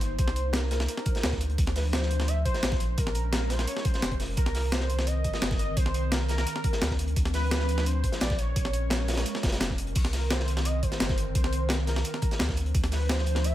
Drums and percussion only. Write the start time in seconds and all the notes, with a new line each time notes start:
0.01 closed hi-hat
0.19 kick, closed hi-hat
0.28 snare
0.36 closed hi-hat
0.53 snare, closed hi-hat
0.71 snare, closed hi-hat
0.80 snare, closed hi-hat
0.88 closed hi-hat
0.97 snare
1.06 kick, closed hi-hat
1.15 snare, closed hi-hat
1.23 snare, closed hi-hat
1.32 kick, snare
1.40 closed hi-hat
1.50 closed hi-hat
1.58 kick, closed hi-hat
1.67 snare
1.76 snare, closed hi-hat, open hi-hat
1.93 snare, closed hi-hat
2.03 snare
2.11 closed hi-hat
2.20 snare, closed hi-hat
2.28 closed hi-hat
2.45 kick, closed hi-hat
2.54 snare, closed hi-hat
2.63 snare, closed hi-hat
2.72 kick, snare
2.80 closed hi-hat
2.98 kick, closed hi-hat
3.07 snare
3.15 closed hi-hat
3.33 snare, closed hi-hat
3.50 snare, closed hi-hat
3.59 snare, closed hi-hat
3.67 closed hi-hat
3.77 snare
3.85 kick, closed hi-hat
3.94 snare, closed hi-hat
4.02 snare, closed hi-hat
4.11 kick, closed hi-hat
4.20 snare, closed hi-hat, open hi-hat
4.37 kick, closed hi-hat
4.46 snare, closed hi-hat
4.55 snare, closed hi-hat, open hi-hat
4.72 snare, closed hi-hat
4.80 snare
4.90 closed hi-hat
4.99 snare, closed hi-hat
5.07 closed hi-hat
5.24 kick, closed hi-hat
5.33 snare, closed hi-hat
5.42 snare, closed hi-hat
5.51 kick, snare
5.59 closed hi-hat
5.77 kick, closed hi-hat
5.86 snare
5.94 closed hi-hat
6.12 snare, closed hi-hat
6.28 snare, closed hi-hat
6.38 snare, closed hi-hat
6.47 closed hi-hat
6.56 snare
6.64 kick, closed hi-hat
6.73 snare, closed hi-hat
6.82 snare, closed hi-hat
6.91 kick, snare
6.99 closed hi-hat
7.08 closed hi-hat
7.16 kick, closed hi-hat
7.25 snare, closed hi-hat
7.33 snare, closed hi-hat, open hi-hat
7.51 snare, closed hi-hat
7.60 snare
7.69 closed hi-hat
7.78 snare, closed hi-hat
7.86 closed hi-hat
8.04 kick, closed hi-hat
8.12 snare, closed hi-hat
8.20 snare, closed hi-hat
8.30 kick, snare
8.38 closed hi-hat
8.56 kick, closed hi-hat
8.65 snare
8.73 closed hi-hat
8.90 snare, closed hi-hat
9.08 snare, closed hi-hat
9.13 snare, closed hi-hat
9.17 snare, closed hi-hat
9.26 closed hi-hat
9.35 snare
9.43 kick, snare, closed hi-hat
9.48 snare, closed hi-hat
9.52 snare, closed hi-hat
9.60 snare, closed hi-hat
9.70 kick, snare
9.78 closed hi-hat
9.87 closed hi-hat
9.95 kick, closed hi-hat, crash
10.05 snare, closed hi-hat
10.13 snare, closed hi-hat, open hi-hat
10.30 snare, closed hi-hat
10.40 snare
10.48 closed hi-hat
10.57 snare, closed hi-hat
10.65 closed hi-hat
10.83 kick, closed hi-hat
10.92 snare, closed hi-hat
11.00 snare, closed hi-hat
11.09 kick, snare
11.18 closed hi-hat
11.35 kick, closed hi-hat
11.44 snare
11.53 closed hi-hat
11.69 snare, closed hi-hat
11.87 snare, closed hi-hat
11.96 snare, closed hi-hat
12.04 closed hi-hat
12.14 snare
12.22 kick, closed hi-hat
12.31 snare, closed hi-hat
12.39 snare, closed hi-hat
12.49 kick, snare
12.57 closed hi-hat
12.66 closed hi-hat
12.74 kick, closed hi-hat
12.84 snare, closed hi-hat
12.92 snare, closed hi-hat, open hi-hat
13.09 snare, closed hi-hat
13.18 snare
13.26 closed hi-hat
13.35 snare, closed hi-hat
13.44 closed hi-hat